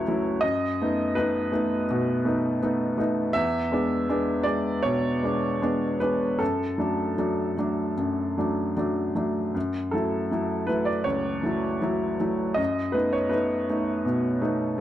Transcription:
0.00 0.45 C#2 soft
0.00 0.08 F#3 soft
0.00 0.08 A3 soft
0.00 0.09 E4 medium
0.00 0.45 B4 medium
0.00 0.42 C#5 medium
0.08 0.40 F#3 soft
0.08 0.40 A3 soft
0.08 0.40 E4 soft
0.41 0.78 F#2 medium
0.41 1.15 D#5 medium
0.82 1.14 A3 soft
0.82 1.14 B3 soft
0.82 1.14 D#4 soft
1.15 1.50 A3 soft
1.15 1.50 B3 soft
1.15 1.50 D#4 medium
1.15 2.98 B4 medium
1.52 1.85 A3 soft
1.52 1.86 B3 soft
1.52 1.86 D#4 soft
1.91 2.25 B2 medium
2.25 2.58 A3 soft
2.25 2.58 B3 soft
2.25 2.59 D#4 soft
2.63 2.96 A3 soft
2.63 2.95 B3 soft
2.63 2.96 D#4 medium
2.98 3.31 A3 soft
2.98 3.31 B3 soft
2.98 3.32 D#4 soft
3.33 3.71 E2 medium
3.33 4.46 E5 medium
3.72 4.06 G#3 soft
3.72 4.06 B3 soft
3.72 4.06 D4 soft
4.09 4.43 G#3 soft
4.09 4.43 B3 soft
4.09 4.44 D4 soft
4.43 4.81 G#3 soft
4.43 4.81 B3 soft
4.43 4.80 D4 soft
4.43 4.83 D5 medium
4.83 5.22 B2 soft
4.83 5.99 C#5 medium
5.23 5.58 G#3 soft
5.23 5.58 B3 soft
5.23 5.59 D4 soft
5.62 5.97 G#3 soft
5.62 5.97 B3 soft
5.62 5.97 D4 soft
6.00 6.36 G#3 soft
6.00 6.37 B3 soft
6.00 6.37 D4 soft
6.00 6.40 B4 medium
6.39 6.78 F#2 soft
6.39 8.76 A4 medium
6.78 7.14 F#3 soft
6.78 7.14 A3 soft
6.78 7.15 D4 soft
7.18 7.54 F#3 soft
7.18 7.54 A3 soft
7.18 7.54 D4 soft
7.58 7.93 F#3 soft
7.58 7.94 A3 soft
7.58 7.94 D4 soft
7.97 8.36 F#2 soft
8.38 8.73 F#3 soft
8.38 8.73 A3 soft
8.38 8.73 D4 soft
8.77 9.12 F#3 soft
8.77 9.12 A3 soft
8.77 9.13 D4 soft
9.15 9.51 F#3 soft
9.15 9.51 A3 soft
9.15 9.52 D4 soft
9.55 9.92 F#2 soft
9.91 10.28 F#3 soft
9.91 10.28 A3 soft
9.91 10.29 E4 soft
9.91 10.68 A4 medium
10.31 10.65 F#3 soft
10.31 10.66 A3 soft
10.31 10.66 E4 soft
10.67 11.03 F#3 soft
10.67 11.03 A3 soft
10.67 11.03 E4 soft
10.67 10.87 B4 medium
10.85 11.06 D5 medium
11.04 11.43 C#2 soft
11.04 12.57 C#5 medium
11.43 11.78 F#3 soft
11.43 11.78 A3 soft
11.43 11.79 E4 soft
11.82 12.17 F#3 soft
11.82 12.17 A3 soft
11.82 12.17 E4 soft
12.20 12.54 F#3 soft
12.20 12.55 A3 soft
12.20 12.55 E4 soft
12.54 12.94 F#2 medium
12.54 12.94 D#5 medium
12.92 13.29 A3 soft
12.92 13.29 B3 soft
12.92 13.29 D#4 soft
12.92 13.13 B4 medium
13.13 13.33 C#5 medium
13.29 13.66 A3 soft
13.29 13.66 B3 soft
13.29 13.66 D#4 soft
13.29 14.80 B4 medium
13.69 14.03 A3 soft
13.69 14.03 B3 soft
13.69 14.04 D#4 soft
14.05 14.42 B2 soft
14.41 14.75 A3 soft
14.41 14.76 B3 soft
14.41 14.76 D#4 soft

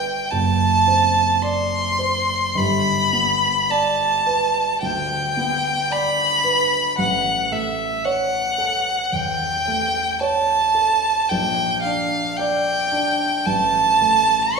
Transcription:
0.00 0.28 G1 soft
0.00 0.34 B3 soft
0.00 0.32 B4 soft
0.00 0.34 D5 soft
0.00 0.33 G5 medium
0.31 2.53 F#1 soft
0.31 1.44 A5 medium
0.88 1.76 C4 soft
1.42 2.33 D5 soft
1.42 2.58 C6 medium
1.99 2.57 C5 soft
2.55 4.78 G1 soft
2.55 3.72 B5 medium
3.13 4.04 B3 soft
3.70 4.60 D5 soft
3.70 4.81 A5 medium
4.26 5.16 B4 soft
4.82 5.71 D2 soft
4.82 5.93 G5 medium
5.37 6.24 B3 soft
5.91 6.77 D5 soft
5.91 6.98 B5 medium
6.44 6.98 B4 soft
6.98 9.09 A1 soft
6.98 7.54 F#5 medium
7.52 8.37 A3 soft
7.52 8.06 E5 medium
8.05 8.91 C#5 soft
8.05 9.14 F#5 medium
8.58 9.46 A4 soft
9.12 10.00 E2 soft
9.12 10.21 G5 medium
9.67 10.54 A3 soft
10.20 11.09 C#5 soft
10.20 11.30 A5 medium
10.75 11.31 A4 soft
11.29 13.43 A#1 soft
11.29 11.82 G5 medium
11.82 12.71 D4 soft
11.82 12.38 F5 medium
12.36 13.25 D5 soft
12.36 13.47 G5 medium
12.92 13.46 D4 soft
13.46 14.60 A1 soft
13.46 14.58 A5 medium
14.02 14.60 A3 soft
14.56 14.60 C#6 medium

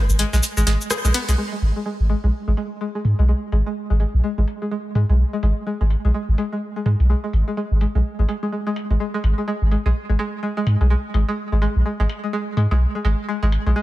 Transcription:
0.09 0.24 G#1 medium
0.09 shaker soft
0.19 0.25 G#3 medium
0.19 closed hi-hat medium
0.33 0.40 A#1 medium
0.33 0.35 G#3 medium
0.33 snare medium
0.33 shaker soft
0.43 closed hi-hat medium
0.43 shaker medium
0.57 0.63 G#1 medium
0.57 0.61 G#3 medium
0.57 shaker soft
0.67 0.76 G#1 medium
0.67 0.70 G#3 medium
0.67 snare medium
0.67 closed hi-hat medium
0.81 shaker soft
0.90 0.94 G#4 medium
0.90 cross-stick loud
0.90 snare soft
0.90 closed hi-hat medium
0.90 shaker medium
1.05 1.11 A#1 loud
1.05 1.07 G#3 medium
1.05 shaker soft
1.14 1.18 B3 loud
1.14 closed hi-hat medium
1.14 open hi-hat medium
1.29 1.35 B1 medium
1.29 1.31 G#3 medium
1.29 closed hi-hat soft
1.29 shaker soft
1.38 1.44 G#3 medium
1.52 1.54 G#3 medium
1.62 1.71 G#1 medium
1.62 closed hi-hat medium
1.76 1.80 G#3 medium
1.86 1.88 G#3 medium
2.00 2.14 G#1 medium
2.10 2.15 G#3 medium
2.10 closed hi-hat medium
2.24 2.30 A#1 medium
2.24 2.26 G#3 medium
2.48 2.54 G#1 medium
2.48 2.51 G#3 medium
2.57 2.59 G#3 medium
2.57 closed hi-hat medium
2.81 2.87 G#3 medium
2.95 2.97 G#3 medium
3.05 3.14 G#2 medium
3.05 closed hi-hat medium
3.19 3.33 B1 medium
3.19 3.23 G#3 medium
3.19 closed hi-hat soft
3.29 3.31 G#3 medium
3.52 3.62 G#1 medium
3.52 3.58 G#3 medium
3.52 closed hi-hat medium
3.67 3.69 G#3 medium
3.90 4.05 G#1 medium
3.90 3.94 G#3 medium
4.00 4.02 G#3 medium
4.00 closed hi-hat medium
4.14 4.21 A#1 medium
4.24 4.29 G#3 medium
4.38 4.44 G#1 medium
4.38 4.40 G#3 medium
4.48 closed hi-hat medium
4.62 4.66 G#3 medium
4.71 4.74 G#3 medium
4.95 5.05 G#2 medium
4.95 5.01 G#3 medium
4.95 closed hi-hat medium
5.10 5.24 B1 loud
5.10 5.12 G#3 medium
5.10 closed hi-hat soft
5.33 5.37 G#3 medium
5.43 5.52 G#1 medium
5.43 5.45 G#3 medium
5.43 closed hi-hat medium
5.67 5.72 G#3 medium
5.81 5.95 G#1 medium
5.81 5.83 G#3 medium
5.90 closed hi-hat medium
6.05 6.11 A#1 medium
6.05 6.09 G#3 medium
6.14 6.17 G#3 medium
6.29 6.35 G#1 medium
6.38 6.44 G#3 medium
6.38 closed hi-hat medium
6.52 6.54 G#3 medium
6.76 6.80 G#3 medium
6.86 6.95 G#2 medium
6.86 6.88 G#3 medium
6.86 closed hi-hat medium
7.00 7.14 B1 loud
7.00 closed hi-hat soft
7.10 7.15 G#3 medium
7.24 7.26 G#3 medium
7.33 7.43 G#1 medium
7.33 closed hi-hat medium
7.48 7.51 G#3 medium
7.57 7.59 G#3 medium
7.57 closed hi-hat soft
7.71 7.85 G#1 medium
7.81 7.87 G#3 medium
7.81 closed hi-hat medium
7.95 8.02 A#1 medium
7.95 7.97 G#3 medium
8.19 8.25 G#1 medium
8.19 8.23 G#3 medium
8.29 8.32 G#3 medium
8.29 closed hi-hat medium
8.43 8.47 G#3 medium
8.52 8.55 G#3 medium
8.67 8.69 G#3 loud
8.76 closed hi-hat medium
8.90 8.97 G#1 medium
8.90 8.93 G#3 medium
8.90 closed hi-hat soft
9.00 9.06 G#3 medium
9.14 9.16 G#3 medium
9.24 9.33 G#1 medium
9.24 closed hi-hat medium
9.38 9.42 G#3 medium
9.48 9.50 G#3 medium
9.62 9.76 G#1 medium
9.71 9.77 G#3 medium
9.71 closed hi-hat medium
9.86 9.92 A#1 medium
9.86 9.88 G#3 loud
10.10 10.16 G#1 medium
10.10 10.13 G#3 medium
10.19 10.21 G#3 loud
10.19 closed hi-hat medium
10.43 10.49 G#3 medium
10.57 10.59 G#3 loud
10.67 10.76 G#2 medium
10.67 closed hi-hat medium
10.81 10.95 B1 medium
10.81 10.85 G#3 medium
10.81 closed hi-hat soft
10.90 10.93 G#3 medium
11.14 11.24 G#1 medium
11.14 11.20 G#3 medium
11.14 closed hi-hat medium
11.29 11.31 G#3 medium
11.52 11.66 G#1 medium
11.52 11.56 G#3 medium
11.62 11.64 G#3 loud
11.62 closed hi-hat medium
11.76 11.82 A#1 medium
11.86 11.91 G#3 medium
12.00 12.06 G#1 medium
12.00 12.02 G#3 loud
12.09 closed hi-hat medium
12.24 12.28 G#3 medium
12.33 12.36 G#3 loud
12.57 12.66 G#2 medium
12.57 12.63 G#3 medium
12.57 closed hi-hat medium
12.71 12.85 B1 loud
12.71 12.73 G#3 loud
12.71 closed hi-hat soft
12.95 12.99 G#3 medium
13.05 13.14 G#1 medium
13.05 13.07 G#3 loud
13.05 closed hi-hat medium
13.29 13.34 G#3 medium
13.43 13.57 G#1 medium
13.43 13.45 G#3 loud
13.52 closed hi-hat medium
13.66 13.73 A#1 medium
13.66 13.70 G#3 medium
13.76 13.78 G#3 medium

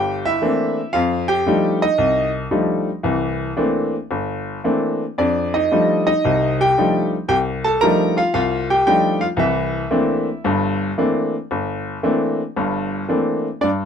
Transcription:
0.00 0.36 G1 medium
0.00 0.24 G4 medium
0.00 0.28 G5 loud
0.25 0.91 E4 medium
0.25 0.97 E5 medium
0.41 0.78 E3 soft
0.41 0.79 A3 soft
0.41 0.79 A#3 soft
0.41 0.79 C4 soft
0.41 0.79 D4 medium
0.93 1.40 F2 medium
0.93 1.26 F4 medium
0.93 1.29 F5 medium
1.28 1.77 G4 medium
1.28 1.82 G5 medium
1.46 1.83 F3 medium
1.46 1.83 G3 medium
1.46 1.83 A3 soft
1.46 1.84 D4 medium
1.46 1.82 D#4 medium
1.82 2.31 D#4 medium
1.82 2.31 D#5 medium
1.98 2.44 C2 medium
2.51 2.88 F3 medium
2.51 2.88 G3 soft
2.51 2.88 A3 soft
2.51 2.88 D4 soft
2.51 2.88 D#4 medium
3.03 3.50 C2 medium
3.03 3.50 E3 medium
3.57 3.94 E3 medium
3.57 3.95 A3 soft
3.57 3.95 A#3 soft
3.57 3.95 C4 soft
3.57 3.95 D4 medium
4.11 4.57 G1 medium
4.64 5.02 E3 soft
4.64 5.03 A3 soft
4.64 5.02 A#3 soft
4.64 5.03 C4 soft
4.64 5.03 D4 medium
5.18 5.65 F2 medium
5.18 5.52 D4 medium
5.18 5.55 D5 medium
5.54 5.71 D#4 medium
5.54 6.05 D#5 medium
5.71 6.09 F3 medium
5.71 6.09 G3 soft
5.71 6.09 A3 soft
5.71 6.09 D4 soft
5.71 6.05 D#4 medium
6.07 6.56 D#4 medium
6.07 6.56 D#5 medium
6.25 6.70 C2 medium
6.25 6.70 C3 medium
6.61 7.09 G4 medium
6.61 7.09 G5 medium
6.78 7.14 F3 medium
6.78 7.14 G3 soft
6.78 7.14 A3 soft
6.78 7.14 D4 soft
6.78 7.14 D#4 medium
7.28 7.74 C2 medium
7.28 7.37 G4 medium
7.28 7.37 G5 medium
7.64 7.81 A4 medium
7.64 7.82 A5 medium
7.81 8.18 F3 medium
7.81 8.19 G3 soft
7.81 8.19 A3 medium
7.81 8.19 D4 soft
7.81 8.19 D#4 medium
7.81 8.13 A#4 medium
7.81 8.17 A#5 loud
8.17 8.33 F4 medium
8.17 8.32 F5 medium
8.34 8.79 C2 medium
8.34 8.67 F4 medium
8.34 8.66 F5 medium
8.70 8.85 G4 medium
8.70 8.85 G5 medium
8.87 9.23 F3 medium
8.87 9.23 G3 soft
8.87 9.23 A3 soft
8.87 9.23 D4 soft
8.87 9.23 D#4 medium
8.87 9.19 G4 medium
8.87 9.22 G5 medium
9.21 9.27 F4 medium
9.21 9.26 F5 medium
9.37 9.83 C2 medium
9.37 9.83 E3 medium
9.37 10.93 E4 medium
9.37 10.93 E5 medium
9.91 10.28 E3 medium
9.91 10.28 A3 soft
9.91 10.27 A#3 medium
9.91 10.27 C4 medium
9.91 10.28 D4 medium
10.44 10.90 G1 medium
10.44 10.90 G2 medium
10.98 11.34 E3 medium
10.98 11.34 A3 soft
10.98 11.34 A#3 soft
10.98 11.34 C4 soft
10.98 11.34 D4 medium
11.51 11.96 G1 medium
12.03 12.40 E3 medium
12.03 12.40 A3 medium
12.03 12.40 A#3 soft
12.03 12.40 C4 soft
12.03 12.40 D4 medium
12.56 13.03 G1 medium
12.56 13.03 G2 medium
13.08 13.47 E3 soft
13.08 13.46 A3 soft
13.08 13.46 A#3 soft
13.08 13.47 C4 soft
13.08 13.47 D4 medium
13.61 13.85 G2 medium
13.61 13.69 D4 medium
13.61 13.69 D5 medium

